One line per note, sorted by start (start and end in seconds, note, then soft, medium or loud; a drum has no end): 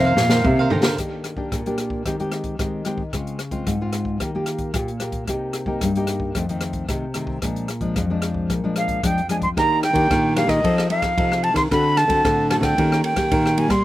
0.00 0.42 F2 medium
0.00 0.16 C3 loud
0.00 0.16 D#3 medium
0.00 0.17 A#3 medium
0.00 0.17 C4 medium
0.00 0.69 F5 medium
0.05 0.16 A#4 medium
0.05 0.17 C5 medium
0.05 0.17 F5 medium
0.17 0.41 A#2 medium
0.17 muted cavaquinho stroke soft
0.17 snare medium
0.29 0.66 D#3 medium
0.29 0.66 A#3 medium
0.29 0.67 C4 medium
0.29 0.57 A#4 medium
0.29 0.57 C5 medium
0.29 0.56 F5 medium
0.29 snare medium
0.44 0.69 C3 medium
0.44 0.96 C3 medium
0.44 kick medium
0.44 mid tom medium
0.59 0.70 A#4 medium
0.59 0.71 C5 medium
0.59 0.71 F5 medium
0.70 0.95 D3 medium
0.70 0.93 D#3 medium
0.70 0.94 A#3 medium
0.70 0.94 C4 medium
0.70 0.84 D#4 medium
0.70 0.84 A#4 medium
0.70 0.83 C5 medium
0.70 0.82 F5 medium
0.70 floor tom medium
0.83 0.97 A#4 medium
0.83 0.97 C5 medium
0.83 0.96 F5 medium
0.83 snare medium
0.98 1.49 D#3 soft
0.98 1.34 A#3 soft
0.98 1.34 D4 soft
0.98 1.35 G4 soft
0.98 kick medium
0.98 cross-stick soft
0.98 closed hi-hat medium
1.24 cross-stick medium
1.24 closed hi-hat soft
1.37 1.60 A#3 soft
1.37 1.60 D4 soft
1.37 1.61 G4 medium
1.37 kick medium
1.52 2.03 A#2 medium
1.52 kick medium
1.52 cross-stick medium
1.52 closed hi-hat soft
1.66 2.04 A#3 soft
1.66 2.04 D4 soft
1.66 2.04 G4 medium
1.66 closed hi-hat soft
1.78 cross-stick medium
1.78 closed hi-hat soft
1.90 kick medium
2.06 2.56 D#3 medium
2.06 2.15 G#3 soft
2.06 2.15 C4 soft
2.06 2.15 G4 medium
2.06 kick soft
2.06 cross-stick medium
2.06 closed hi-hat medium
2.19 2.55 G#3 medium
2.19 2.55 C4 soft
2.19 2.56 G4 medium
2.19 closed hi-hat soft
2.32 cross-stick medium
2.32 closed hi-hat soft
2.44 kick medium
2.44 closed hi-hat soft
2.59 3.10 D#3 medium
2.59 2.82 G#3 soft
2.59 2.82 C4 soft
2.59 2.82 G4 soft
2.59 kick medium
2.59 cross-stick medium
2.59 closed hi-hat medium
2.85 3.01 G#3 soft
2.85 3.02 C4 soft
2.85 3.02 G4 medium
2.85 cross-stick medium
2.85 closed hi-hat soft
2.98 kick medium
3.13 3.64 C#3 medium
3.13 3.38 G#3 soft
3.13 3.38 C4 soft
3.13 3.39 F4 medium
3.13 kick medium
3.13 cross-stick medium
3.13 closed hi-hat soft
3.27 closed hi-hat soft
3.39 cross-stick medium
3.39 closed hi-hat soft
3.51 3.75 G#3 soft
3.51 3.75 C4 soft
3.51 3.75 F4 medium
3.51 kick medium
3.51 closed hi-hat soft
3.67 4.18 G#2 medium
3.67 kick medium
3.67 cross-stick soft
3.67 closed hi-hat medium
3.81 4.19 G#3 medium
3.81 4.19 C4 medium
3.81 4.19 F4 medium
3.93 cross-stick medium
3.93 closed hi-hat soft
4.05 kick medium
4.20 4.72 D#3 medium
4.20 4.30 A#3 soft
4.20 4.30 F4 soft
4.20 4.30 G4 soft
4.20 kick medium
4.20 cross-stick medium
4.20 closed hi-hat medium
4.35 4.70 A#3 medium
4.35 4.70 F4 medium
4.35 4.71 G4 medium
4.46 cross-stick medium
4.46 closed hi-hat soft
4.58 kick medium
4.58 closed hi-hat soft
4.74 5.25 A#2 medium
4.74 4.90 A#3 soft
4.74 4.90 F4 soft
4.74 4.90 G4 medium
4.74 kick medium
4.74 cross-stick medium
4.74 closed hi-hat medium
4.88 closed hi-hat soft
5.00 5.23 A#3 soft
5.00 5.23 F4 soft
5.00 5.24 G4 soft
5.00 cross-stick medium
5.00 closed hi-hat soft
5.12 kick medium
5.12 closed hi-hat soft
5.28 5.79 C3 medium
5.28 5.64 A#3 soft
5.28 5.64 D#4 soft
5.28 5.64 G4 soft
5.28 kick medium
5.28 cross-stick medium
5.28 closed hi-hat medium
5.53 cross-stick medium
5.53 closed hi-hat soft
5.66 5.90 A#3 medium
5.66 5.90 D#4 soft
5.66 5.90 G4 medium
5.66 kick medium
5.81 6.33 G2 medium
5.81 kick medium
5.81 cross-stick medium
5.81 closed hi-hat medium
5.95 6.34 A#3 medium
5.95 6.34 D#4 medium
5.95 6.34 G4 medium
5.95 closed hi-hat soft
6.07 cross-stick medium
6.07 closed hi-hat soft
6.20 kick medium
6.35 6.86 F2 medium
6.35 6.44 D#3 soft
6.35 6.45 A3 medium
6.35 6.45 C4 soft
6.35 kick medium
6.35 cross-stick medium
6.35 closed hi-hat soft
6.49 6.85 D#3 soft
6.49 6.85 A3 medium
6.49 6.85 C4 medium
6.49 closed hi-hat soft
6.61 cross-stick medium
6.61 closed hi-hat soft
6.73 kick medium
6.73 closed hi-hat soft
6.89 7.40 C3 medium
6.89 7.05 D#3 soft
6.89 7.05 A3 soft
6.89 7.05 C4 medium
6.89 kick medium
6.89 cross-stick medium
6.89 closed hi-hat medium
7.14 7.38 D#3 medium
7.14 7.38 A3 medium
7.14 7.38 C4 medium
7.14 cross-stick medium
7.14 closed hi-hat soft
7.27 kick medium
7.42 7.94 A#2 medium
7.42 7.68 F3 soft
7.42 7.68 G#3 soft
7.42 7.68 D4 soft
7.42 kick medium
7.42 cross-stick medium
7.42 closed hi-hat soft
7.56 closed hi-hat soft
7.68 cross-stick medium
7.68 closed hi-hat soft
7.81 8.04 F3 medium
7.81 8.05 G#3 soft
7.81 8.05 D4 medium
7.81 kick medium
7.81 closed hi-hat soft
7.96 8.47 F2 medium
7.96 kick medium
7.96 cross-stick medium
7.96 closed hi-hat soft
8.10 8.59 F3 medium
8.10 8.59 G#3 medium
8.10 8.60 D4 medium
8.22 cross-stick medium
8.22 closed hi-hat soft
8.34 kick soft
8.50 9.01 A#2 medium
8.50 kick medium
8.50 cross-stick medium
8.50 closed hi-hat soft
8.64 8.99 F3 soft
8.64 9.00 G#3 medium
8.64 9.00 D4 medium
8.76 9.02 F5 medium
8.76 cross-stick medium
8.76 closed hi-hat soft
8.88 kick medium
8.88 closed hi-hat soft
9.03 9.54 F2 medium
9.03 9.19 F3 soft
9.03 9.19 G#3 soft
9.03 9.20 D4 medium
9.03 9.29 G5 medium
9.03 kick medium
9.03 cross-stick medium
9.03 closed hi-hat medium
9.18 closed hi-hat soft
9.29 9.45 F3 soft
9.29 9.45 G#3 medium
9.29 9.46 D4 medium
9.29 9.36 G#5 medium
9.29 cross-stick medium
9.29 closed hi-hat soft
9.42 9.49 C6 medium
9.42 kick medium
9.42 closed hi-hat soft
9.56 10.08 D#3 soft
9.56 9.91 D#3 medium
9.56 9.82 A#3 medium
9.56 9.82 D4 soft
9.56 9.82 G4 medium
9.56 9.82 A#5 loud
9.56 kick medium
9.56 cross-stick medium
9.56 ride soft
9.83 10.33 G5 loud
9.83 cross-stick medium
9.83 ride soft
9.93 10.06 D#3 medium
9.93 10.32 A#3 medium
9.93 10.32 D4 medium
9.93 10.32 G4 medium
9.93 kick medium
9.93 ride soft
10.10 10.61 A#2 medium
10.10 10.45 D#3 medium
10.10 kick medium
10.10 cross-stick medium
10.10 ride soft
10.36 10.59 A#3 medium
10.36 10.59 D4 medium
10.36 10.60 G4 medium
10.36 10.50 F5 medium
10.36 cross-stick medium
10.36 ride soft
10.47 10.60 D#3 medium
10.47 10.89 D#5 medium
10.47 kick medium
10.47 cross-stick medium
10.47 ride soft
10.64 11.15 F3 medium
10.64 10.87 F3 medium
10.64 10.86 C4 soft
10.64 10.87 D#4 soft
10.64 10.87 A4 medium
10.64 kick medium
10.64 ride soft
10.78 cross-stick medium
10.90 11.13 C4 medium
10.90 11.13 D#4 medium
10.90 11.13 A4 medium
10.90 11.45 F5 medium
10.90 ride soft
11.02 kick medium
11.02 cross-stick medium
11.02 ride soft
11.17 11.68 C3 medium
11.17 11.52 F3 medium
11.17 11.67 C4 soft
11.17 11.67 D#4 soft
11.17 11.67 A4 medium
11.17 kick medium
11.17 ride soft
11.32 cross-stick medium
11.43 11.55 A5 medium
11.43 ride soft
11.54 11.67 D#3 medium
11.54 11.62 C6 medium
11.54 kick medium
11.54 cross-stick medium
11.54 ride soft
11.71 12.22 D3 soft
11.71 12.05 D3 medium
11.71 11.96 C4 soft
11.71 11.97 F#4 medium
11.71 11.97 A4 medium
11.71 11.99 B5 medium
11.71 kick medium
11.71 cross-stick medium
11.71 ride soft
11.97 12.49 A5 medium
11.97 cross-stick medium
11.97 ride soft
12.07 12.21 D3 medium
12.07 12.46 C4 medium
12.07 12.46 F#4 medium
12.07 12.47 A4 medium
12.07 kick medium
12.07 ride soft
12.25 12.76 A2 medium
12.25 12.59 D3 medium
12.25 kick medium
12.25 cross-stick medium
12.25 ride soft
12.50 12.73 C4 medium
12.50 12.74 F#4 medium
12.50 12.74 A4 medium
12.50 12.56 A5 medium
12.50 cross-stick medium
12.50 ride soft
12.61 12.74 D3 medium
12.61 13.01 G5 medium
12.61 kick medium
12.61 cross-stick medium
12.61 ride soft
12.78 13.29 D#3 medium
12.78 13.01 D#3 medium
12.78 13.14 A#3 medium
12.78 13.14 C#4 medium
12.78 13.14 G4 medium
12.78 kick medium
12.78 ride soft
12.92 cross-stick medium
13.04 13.60 G5 medium
13.04 ride medium
13.16 13.53 A#3 medium
13.16 13.53 C#4 medium
13.16 13.54 G4 medium
13.16 kick medium
13.16 cross-stick medium
13.16 ride soft
13.31 13.82 A#2 medium
13.31 13.66 D#3 medium
13.31 kick medium
13.31 ride medium
13.46 cross-stick medium
13.57 13.74 A#3 medium
13.57 13.74 C#4 soft
13.57 13.74 G4 medium
13.57 13.72 G#5 medium
13.57 ride soft
13.68 13.81 G3 medium
13.68 13.84 C6 medium
13.68 kick medium
13.68 cross-stick medium
13.68 ride soft